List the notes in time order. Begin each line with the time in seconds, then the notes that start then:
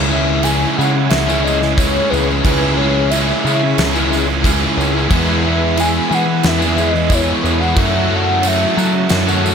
Already playing: C#2 C#3 G#3 C#4 E4 G#4 C#5 B5
0.10 C#3 G#3 C#4 E4 G#4 E5
0.42 C#3 G#3 C#4 E4 G#4 G#5, tambourine, crash
0.63 tambourine
0.77 C#3 G#3 C#4 E4 G#4 F#5
0.81 tambourine
0.95 C#4 E4, muted overdriven electric guitar stroke
1.00 G#3
1.10 C#2 C#3 G#3 C#4 E4 E5, snare, crash
1.27 C#4 E4 G#4, tambourine
1.32 G#3
1.44 C#3 G#3 C#4 E4 G#4 D#5, tambourine
1.61 C#4 E4, muted overdriven electric guitar stroke, snare, tambourine
1.65 G#3
1.77 C#3 G#3 C#4 E4 G#4 C#5, kick, tambourine, crash
1.96 tambourine
2.10 C#2 C#3 G#3 C#4 E4 G#4 B4, tambourine
2.27 C#4 E4 G#4, tambourine
2.31 G#3
2.43 C#2 C#3 G#3 C#4 E4 G#4 B4, kick, crash
2.62 G#3 C#4 E4
2.76 C#3 G#3 C#4 E4 G#4 C#5
3.11 C#3 G#3 C#4 E4 G#4 E5, tambourine, crash
3.29 tambourine
3.45 C#3 G#3 C#4 E4 G#4, tambourine
3.61 G#3 C#4 E4, muted overdriven electric guitar stroke
3.77 C#2 C#3 G#3 C#4 E4, snare, crash
3.94 C#4 E4 G#4, tambourine
3.98 G#3
4.10 C#3 G#3 C#4 E4 G#4, tambourine
4.26 C#4 E4, muted overdriven electric guitar stroke, tambourine
4.31 G#3
4.41 C#3 G#3 C#4 E4 G#4, kick, crash
4.46 tambourine
4.64 tambourine
4.76 C#2 C#3 G#3 C#4 E4 G#4
4.80 G#3 E4, tambourine
4.92 C#4 E4 G#4
4.98 G#3, tambourine
5.09 E2 E3 G#3 B3 E4 G#4 B4, kick, crash
5.14 G#3 B3 E4
5.29 G#3 B3 E4
5.42 E3 G#3 B3 E4 G#4 E5
5.46 G#3 B3
5.76 E3 G#3 B3 E4 G#4 G#5, tambourine, crash
6.09 E3 G#3 B3 E4 G#4, tambourine
6.14 F#5
6.25 B3 E4, muted overdriven electric guitar stroke
6.30 G#3
6.43 E2 E3 G#3 B3 E4, snare, crash
6.48 E5
6.58 B3 E4 G#4, tambourine
6.64 G#3
6.76 E3 G#3 B3 E4 G#4, tambourine
6.81 B3 E4 D#5
6.92 B3 E4, muted overdriven electric guitar stroke, tambourine
6.97 G#3
7.09 E3 G#3 B3 E4 G#4, kick, tambourine, crash
7.15 C#5
7.28 tambourine
7.41 E2 E3 G#3 B3 E4 G#4
7.46 F#5, tambourine
7.60 G#3 B3 E4 G#4, tambourine
7.76 F#2 C#3 F#3 A3 C#4 F#4 A4 C#5 A5, kick, tambourine, crash
7.80 F#4 E5
7.94 A3 C#4 F#4
8.09 F#3 A3 C#4 F#4 A4
8.16 F#5
8.43 F#2 C#3 F#3 A3 C#4 F#4 A4, tambourine, crash
8.47 E5
8.61 tambourine
8.76 F#3 A3 C#4 F#4 A4, tambourine
8.93 A3 C#4 F#4, muted overdriven electric guitar stroke
9.09 F#2 F#3 A3 C#4 F#4, snare, tambourine, crash
9.26 F#3 A3 C#4 F#4 A4, tambourine
9.43 F#3 A3 C#4 F#4 A4, tambourine